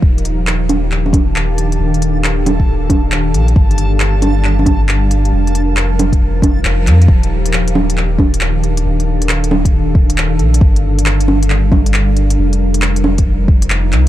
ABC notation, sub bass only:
X:1
M:4/4
L:1/8
Q:"Swing 16ths" 1/4=136
K:Eblyd
V:1 name="Sub bass" clef=bass
E,,,8 | E,,,4 E,,,3 B,,, | G,,,8 | F,,,4 F,,,2 F,,, F,, |
E,,,8 | E,,,4 E,,,3 B,,, | G,,,8 | F,,,4 F,,,3 C,, |]